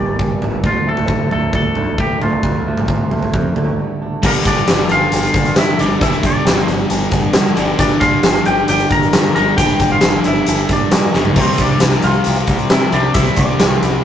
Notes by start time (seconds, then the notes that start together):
Already playing: G1 A#3 D4 D5
0.00 G3
0.19 G1 A#3, kick
0.41 G1 D4, floor tom, mid tom
0.63 D2 D3 F4, kick, floor tom
0.86 D2 A3 A4
0.97 floor tom
1.08 D2 D4, kick, mid tom
1.31 D2 A3 A4, floor tom
1.53 D2 D4 A4, kick, floor tom
1.75 D2 D3, floor tom
1.98 D2 A3 G4, kick
2.21 D2 D4 F4, floor tom, mid tom
2.43 D2 D3, kick, floor tom
2.66 D2 A3
2.77 floor tom, mid tom
2.88 D2 D4, kick, mid tom
3.11 D2 A3, floor tom
3.23 floor tom
3.34 F2 D4, kick, floor tom
3.56 D2 D3, floor tom
3.79 A3
4.02 D4
4.22 G1 G2 D3 G3 A#3 A#4, kick, crash
4.45 G1 D4 D5, kick, closed hi-hat
4.68 G1, snare, closed hi-hat
4.78 closed hi-hat
4.89 G1 F4 F5, closed hi-hat
5.12 G1, closed hi-hat
5.23 closed hi-hat
5.34 G1, kick, closed hi-hat
5.46 closed hi-hat
5.56 G2 E4 E5, snare, closed hi-hat
5.78 G1 G2 D3 G3 D4 D5, closed hi-hat
6.00 G1 G2 D3 G3 E4 E5, kick, closed hi-hat
6.13 closed hi-hat
6.23 G1 D4 D5, kick, closed hi-hat
6.45 G1, snare, closed hi-hat
6.68 G1, closed hi-hat
6.90 G1, closed hi-hat
7.11 G1, kick, closed hi-hat
7.33 G2, snare, closed hi-hat
7.56 G1 G2 D3 G3, closed hi-hat
7.78 G1 G2 D3 G3 D4 D5, kick, closed hi-hat
8.00 G1 F4 F5, kick, snare, closed hi-hat
8.23 G1, snare, closed hi-hat
8.35 closed hi-hat
8.45 G1 G4 G5, closed hi-hat
8.68 G1 G4 G5, closed hi-hat
8.79 closed hi-hat
8.91 G1 A#4 A#5, kick, closed hi-hat
9.03 closed hi-hat
9.13 G2, snare, closed hi-hat
9.35 G1 D3 G3 A#4 A#5, closed hi-hat
9.39 G2
9.57 G1 G2 D3 G4 G5, kick, closed hi-hat
9.61 G3
9.69 closed hi-hat
9.80 G1, kick, closed hi-hat
9.91 F4 F5
10.01 G1, snare, closed hi-hat
10.24 G1 E4 E5, closed hi-hat
10.46 G1, closed hi-hat
10.69 G1 D4 D5, kick, closed hi-hat
10.91 G2, snare, closed hi-hat
11.14 G1 G2 D3 G3, snare
11.25 floor tom
11.36 C2 C3 G3 C4, kick, crash
11.40 C4 C5
11.58 C2 D4 D5, kick, closed hi-hat
11.80 C2, snare, closed hi-hat
11.91 closed hi-hat
12.02 C2 F4 F5, closed hi-hat
12.24 C2, closed hi-hat
12.36 closed hi-hat
12.47 C2, kick, closed hi-hat
12.59 closed hi-hat
12.70 C3 E4 E5, snare, closed hi-hat
12.92 C2 C3 G3 C4 D4 D5, closed hi-hat
13.14 C2 C3 G3 E4 E5, kick, closed hi-hat
13.19 C4
13.26 closed hi-hat
13.36 C2 D4 D5, kick, closed hi-hat
13.60 C2, snare, closed hi-hat
13.82 C2, closed hi-hat